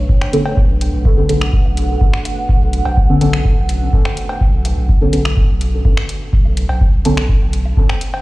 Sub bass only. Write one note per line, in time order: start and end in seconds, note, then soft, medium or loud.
0.21 0.31 F#1 medium
0.57 0.89 B1 loud
0.93 1.25 B1 loud
1.29 1.61 B1 medium
1.65 1.97 B1 medium
2.13 2.23 F#1 medium
2.49 2.81 B1 loud
2.85 3.17 B1 medium
3.21 3.53 B1 medium
3.57 3.89 B1 medium
4.05 4.15 F#1 medium
4.41 4.73 B1 loud
4.77 5.09 B1 loud
5.13 5.45 B1 medium
5.49 5.81 B1 medium
5.97 6.07 F#1 medium
6.33 6.65 B1 loud
6.69 7.01 B1 medium
7.05 7.37 B1 medium
7.41 7.73 B1 medium
7.90 7.99 F#1 medium